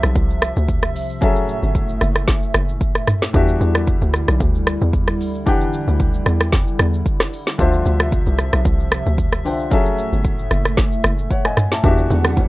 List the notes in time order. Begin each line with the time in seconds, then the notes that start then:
Already playing: C3 D3 F3 D4 F4 C5 E5
0.03 B1, cross-stick, shaker
0.16 C2, kick, shaker
0.30 shaker
0.42 cross-stick, shaker
0.56 D2, shaker
0.68 kick, shaker
0.83 cross-stick, shaker
0.95 C2, open hi-hat, shaker
1.10 shaker
1.21 F#1 A2 F#3 A3 C#4 G#4 A4 E5, kick, shaker
1.36 shaker
1.49 shaker
1.63 G1, shaker
1.75 kick, shaker
1.89 shaker
2.01 F#1, cross-stick, shaker
2.16 cross-stick, shaker
2.28 kick, snare, shaker
2.43 shaker
2.54 F#1, cross-stick, shaker
2.69 shaker
2.81 kick, shaker
2.95 cross-stick, shaker
3.07 cross-stick, mid tom, shaker
3.22 snare, shaker
3.33 E2 D3 E3 G3 D4 E4 F#4 G4 E5, kick, shaker
3.48 shaker
3.61 E2, shaker
3.75 cross-stick, shaker
3.87 kick, shaker
4.02 D2, shaker
4.14 cross-stick, shaker
4.28 B1, cross-stick, shaker
4.40 D2, kick, shaker
4.55 shaker
4.67 cross-stick, shaker
4.81 E2, shaker
4.93 kick, shaker
5.08 cross-stick, shaker
5.20 D2, open hi-hat, shaker
5.35 shaker
5.46 E2 E3 D4 G4 F#5 G5, kick, shaker
5.61 shaker
5.73 shaker
5.88 D2, shaker
6.00 kick, shaker
6.14 shaker
6.26 E2, cross-stick, shaker
6.41 cross-stick, shaker
6.52 kick, snare, shaker
6.67 shaker
6.79 E2, cross-stick, shaker
6.94 shaker
7.06 kick, shaker
7.20 cross-stick, snare, shaker
7.33 open hi-hat, shaker
7.47 snare, shaker
7.58 D2 C3 D3 F3 D4 F4 C5 E5, kick, shaker
7.73 shaker
7.86 D2, shaker
8.00 cross-stick, shaker
8.12 kick, shaker
8.26 C2, shaker
8.39 cross-stick, shaker
8.53 B1, cross-stick, shaker
8.65 C2, kick, shaker
8.80 shaker
8.92 cross-stick, shaker
9.06 D2, shaker
9.18 kick, shaker
9.33 cross-stick, shaker
9.45 C2 D3 D4 F4 C5 G5, open hi-hat, shaker
9.59 shaker
9.71 F#1 A2 F#3 A3 C#4 G#4 A4 E5, kick, shaker
9.86 shaker
9.98 shaker
10.13 G1, shaker
10.24 kick, shaker
10.39 shaker
10.51 F#1, cross-stick, shaker
10.65 cross-stick, shaker
10.77 kick, snare, shaker
10.92 shaker
11.04 F#1, cross-stick, shaker
11.19 shaker
11.31 C#5 F#5, kick, shaker
11.45 D#5 G#5, cross-stick, shaker
11.57 cross-stick, mid tom, shaker
11.72 E5 A5, snare, shaker
11.83 E2 D3 E3 G3 D4 F#4 G4 E5 F#5, kick, low conga, shaker
11.98 shaker
12.10 E2, low bongo, low conga, shaker
12.25 cross-stick, low bongo, shaker
12.37 kick, high bongo, shaker